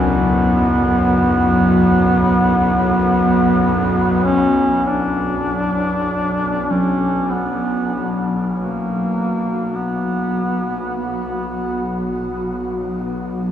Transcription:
Already playing: synth drone B1 F#2, kettle gongs C#2, duduk B3, singing bowl E4
4.24 duduk C#4
4.85 synth drone B1, ambient pad B2, duduk D4, singing bowl E4
5.22 ambient pad F#3
6.70 kettle gongs F#3, duduk C#4
7.32 duduk B3
8.54 duduk A#3
8.68 ambient pad F#4
9.75 duduk B3
10.97 duduk B3

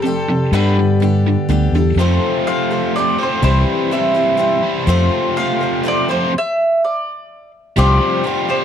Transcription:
0.02 overdriven electric guitar F2 C3, steel-string acoustic guitar G3, mandolin A4
0.06 steel-string acoustic guitar C4 G4 A4
0.28 overdriven electric guitar F2 C3
0.52 fingered electric bass G2, overdriven electric guitar G2 D3 G3, steel-string acoustic guitar G3 B3 D4 G4 A4, mandolin B4
0.79 overdriven electric guitar G2 D3
1.00 overdriven electric guitar G2 D3, steel-string acoustic guitar B3 D4 G4 A4
1.26 overdriven electric guitar G2 D3
1.49 fingered electric bass D2, overdriven electric guitar G2 D3, steel-string acoustic guitar B3 D4 G4 A4
1.72 fingered electric bass E2, overdriven electric guitar G2 D3, steel-string acoustic guitar G4 A4
1.78 steel-string acoustic guitar D4
1.96 fingered electric bass F2, overdriven electric guitar F2 C3 F3 A3 C4 F4, steel-string acoustic guitar F3 A3 C4
2.01 steel-string acoustic guitar A4 C5
2.47 steel-string acoustic guitar A3 C4 A4 C5, mandolin F5
2.71 steel-string acoustic guitar C4 A4 C5
2.96 steel-string acoustic guitar A3 C4 A4 C5, mandolin D5
3.18 overdriven electric guitar F2 C3 F3 A3 C4 F4, steel-string acoustic guitar C4 A4 C5
3.23 mandolin C5
3.42 fingered electric bass C2, steel-string acoustic guitar C3 E3 G3 C4 E4 C5, overdriven electric guitar C3 E3 G3 C4 E4, mandolin C5
3.91 steel-string acoustic guitar G3 C4 E4 C5, mandolin E5
4.14 steel-string acoustic guitar G3 C4 E4 C5
4.37 steel-string acoustic guitar G3 C4 E4 C5
4.63 overdriven electric guitar C3 E3 G3 C4 E4
4.87 fingered electric bass F2, overdriven electric guitar F2 C3 F3 A3 C4 F4, steel-string acoustic guitar F3 A3 C4 F4 C5
5.37 steel-string acoustic guitar A3 C4 F4 C5, mandolin F5
5.61 steel-string acoustic guitar C4 F4 C5
5.83 steel-string acoustic guitar A3 C4 F4 C5
5.88 mandolin D5
6.08 overdriven electric guitar F2 C3 F3 A3 C4 F4, steel-string acoustic guitar C4 F4 C5, mandolin C5
6.38 mandolin E5
6.84 mandolin D5
7.76 fingered electric bass C2, overdriven electric guitar C3 F3 G3 F4 G4, steel-string acoustic guitar C3 F3 G3 C4 F4 C5, tonewheel organ C4 F4 G4 C5, mandolin D5
8.01 overdriven electric guitar G3 F4 G4
8.24 overdriven electric guitar F3 G3 F4 G4, steel-string acoustic guitar G3 C4 F4 C5
8.48 overdriven electric guitar C3 F3 G3 F4 G4, steel-string acoustic guitar G3 C4 F4 C5, mandolin C5

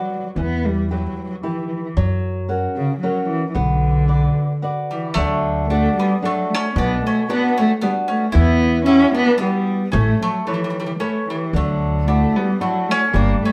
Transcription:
Already playing: nylon-string guitar F#4 B4 D5
0.02 cello F#3
0.11 cello F#3
0.19 cello F#3
0.25 cello F#3
0.36 upright bass E2, nylon-string guitar E3, cello B3
0.67 cello G3
0.91 cello F#3, nylon-string guitar E4 G4 B4
0.99 cello F#3
1.08 cello F#3
1.18 cello F#3
1.24 cello F#3
1.30 cello F#3
1.43 cello E3, nylon-string guitar E4 G4 B4
1.52 cello E3
1.60 cello E3
1.67 cello E3
1.75 cello E3
1.83 cello E3
1.97 upright bass F#2, nylon-string guitar F#3
2.49 nylon-string guitar C#4 F#4 A#4
2.77 cello C#3
2.99 cello F#3, nylon-string guitar C#4 F#4
3.04 nylon-string guitar A#4
3.28 cello E3
3.49 cello E3
3.54 upright bass B1, cello D3, nylon-string guitar B3
4.08 nylon-string guitar F#4 B4 D5
4.62 nylon-string guitar F#4 B4 D5
4.91 cello E3, mandolin G3
5.14 upright bass D2, nylon-string guitar D3, cello F#3, mandolin A3
5.68 cello A3, nylon-string guitar D4 F#4 A4, mandolin D4
5.96 cello G3, mandolin B3
6.22 cello F#3, mandolin A3, nylon-string guitar D4 F#4 A4
6.50 cello A3
6.54 mandolin C#4
6.74 upright bass B1, nylon-string guitar B2, cello B3, mandolin D4
7.04 cello A3, mandolin C#4
7.29 nylon-string guitar B3 D4 F#4, cello B3, mandolin D4
7.58 cello A3, mandolin C#4
7.81 cello G3, mandolin B3, nylon-string guitar B3 D4 F#4
8.08 cello A3, mandolin C#4
8.32 upright bass E2, nylon-string guitar E3, cello B3, mandolin E4
8.85 cello C#4, mandolin E4, nylon-string guitar E4 F#4 G4
9.15 cello B3, mandolin D4
9.38 cello G3, mandolin B3, nylon-string guitar E4 F#4 G4
9.92 upright bass A1, nylon-string guitar A3, cello A3, mandolin C#4
10.22 cello F#3, mandolin A3
10.47 cello E3, mandolin A3, nylon-string guitar A4 B4 C#5
10.54 cello E3, mandolin G3
10.64 cello E3, mandolin G3
10.70 cello E3, mandolin G3
10.79 cello E3, mandolin G3
10.85 cello E3, mandolin G3
10.99 cello A3, mandolin C#4, nylon-string guitar A4 B4 C#5
11.29 cello E3, mandolin G3
11.53 upright bass D2, nylon-string guitar D3, cello F#3, mandolin A3
12.06 cello A3, nylon-string guitar D4 E4 F#4, mandolin D4
12.36 cello G3, mandolin B3
12.60 cello F#3, mandolin A3, nylon-string guitar D4 E4 F#4
12.89 cello A3, mandolin C#4
13.12 upright bass G1, nylon-string guitar G3, cello A#3, mandolin D4
13.42 cello A3, mandolin C#4

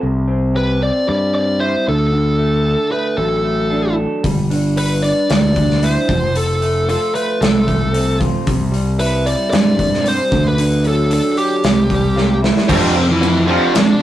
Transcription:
0.01 fingered electric bass C2, clean electric guitar C3
0.28 clean electric guitar C4
0.55 clean electric guitar G4, lead electric guitar B4
0.80 clean electric guitar C4, lead electric guitar D5
1.07 fingered electric bass G2, clean electric guitar G3, lead electric guitar D5
1.33 clean electric guitar C4, lead electric guitar D5
1.60 clean electric guitar E4, lead electric guitar C5
1.87 fingered electric bass D2, clean electric guitar D3, lead electric guitar A4
2.12 clean electric guitar D3
2.38 clean electric guitar A3
2.65 clean electric guitar A4
2.92 clean electric guitar A3, lead electric guitar B4
3.18 fingered electric bass A1, clean electric guitar F#3, lead electric guitar A4
3.44 clean electric guitar A3
3.70 clean electric guitar D4
3.96 clean electric guitar A4
4.23 fingered electric bass G1, clean electric guitar G3, kick, open hi-hat
4.50 clean electric guitar D4, open hi-hat
4.76 clean electric guitar B4, lead electric guitar B4, open hi-hat
5.02 clean electric guitar D4, lead electric guitar D5, open hi-hat
5.29 fingered electric bass D2, clean electric guitar G3, lead electric guitar D5, snare, open hi-hat
5.56 clean electric guitar D4, kick, open hi-hat
5.70 snare
5.83 clean electric guitar E4, lead electric guitar C5, open hi-hat
6.08 fingered electric bass F1, clean electric guitar F3, kick, open hi-hat
6.34 clean electric guitar F3, lead electric guitar A4, open hi-hat
6.62 clean electric guitar A3, open hi-hat
6.88 clean electric guitar F4, lead electric guitar A4, open hi-hat
7.14 clean electric guitar A3, lead electric guitar B4, open hi-hat
7.40 fingered electric bass C2, clean electric guitar F3, lead electric guitar A4, snare, open hi-hat
7.67 clean electric guitar A3, kick, open hi-hat
7.93 clean electric guitar C4, open hi-hat
8.20 clean electric guitar F4, kick, open hi-hat
8.46 fingered electric bass C2, clean electric guitar C3, kick, open hi-hat
8.71 clean electric guitar G3, open hi-hat
8.99 clean electric guitar E4, lead electric guitar B4, open hi-hat
9.25 clean electric guitar G3, lead electric guitar D5, open hi-hat
9.50 fingered electric bass G2, clean electric guitar C3, lead electric guitar D5, snare, open hi-hat
9.77 clean electric guitar G3, kick, open hi-hat
9.94 snare
10.04 clean electric guitar C4, open hi-hat
10.08 lead electric guitar C5
10.31 fingered electric bass D2, clean electric guitar D3, kick, open hi-hat
10.48 lead electric guitar B4
10.57 clean electric guitar D3, open hi-hat
10.84 clean electric guitar F#3, open hi-hat
10.88 lead electric guitar A4
11.10 clean electric guitar D4, lead electric guitar A4, open hi-hat
11.36 clean electric guitar F#3, lead electric guitar G4, open hi-hat
11.63 fingered electric bass C2, clean electric guitar C3, snare, open hi-hat
11.89 clean electric guitar G3, kick, open hi-hat
12.16 clean electric guitar A#3, snare
12.42 clean electric guitar E4, snare
12.57 snare
12.68 distorted electric guitar F2 C3 F3, fingered electric bass F2, clean electric guitar F3 C4 D4, lead electric guitar C4 C5, kick, crash
12.95 distorted electric guitar F2 C3, clean electric guitar F3 C4
13.10 lead electric guitar E3 E4
13.21 distorted electric guitar F2 C3, clean electric guitar F3 C4, crash
13.47 distorted electric guitar F2 C3 F3, clean electric guitar F3 C4 D4, lead electric guitar F3 F4
13.74 distorted electric guitar F2 C3, clean electric guitar F3 C4, lead electric guitar D4 D5, snare, crash

